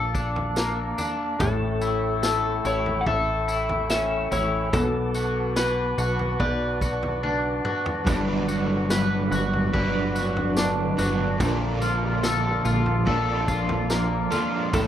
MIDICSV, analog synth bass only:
0, 0, Header, 1, 2, 480
1, 0, Start_track
1, 0, Tempo, 833333
1, 807, Time_signature, 4, 2, 24, 8
1, 8567, End_track
2, 0, Start_track
2, 0, Title_t, "Analog synth bass"
2, 0, Program_c, 0, 38
2, 0, Note_on_c, 0, 34, 108
2, 543, Note_off_c, 0, 34, 0
2, 807, Note_on_c, 0, 33, 103
2, 1504, Note_off_c, 0, 33, 0
2, 1526, Note_on_c, 0, 33, 103
2, 1755, Note_off_c, 0, 33, 0
2, 1766, Note_on_c, 0, 33, 110
2, 2463, Note_off_c, 0, 33, 0
2, 2487, Note_on_c, 0, 33, 99
2, 2715, Note_off_c, 0, 33, 0
2, 2726, Note_on_c, 0, 35, 112
2, 3423, Note_off_c, 0, 35, 0
2, 3444, Note_on_c, 0, 35, 101
2, 3673, Note_off_c, 0, 35, 0
2, 3686, Note_on_c, 0, 35, 102
2, 4383, Note_off_c, 0, 35, 0
2, 4646, Note_on_c, 0, 31, 105
2, 5343, Note_off_c, 0, 31, 0
2, 5365, Note_on_c, 0, 31, 102
2, 5594, Note_off_c, 0, 31, 0
2, 5608, Note_on_c, 0, 31, 110
2, 6304, Note_off_c, 0, 31, 0
2, 6326, Note_on_c, 0, 31, 94
2, 6555, Note_off_c, 0, 31, 0
2, 6566, Note_on_c, 0, 34, 112
2, 7264, Note_off_c, 0, 34, 0
2, 7289, Note_on_c, 0, 34, 100
2, 7516, Note_off_c, 0, 34, 0
2, 7527, Note_on_c, 0, 34, 108
2, 8224, Note_off_c, 0, 34, 0
2, 8487, Note_on_c, 0, 33, 107
2, 8567, Note_off_c, 0, 33, 0
2, 8567, End_track
0, 0, End_of_file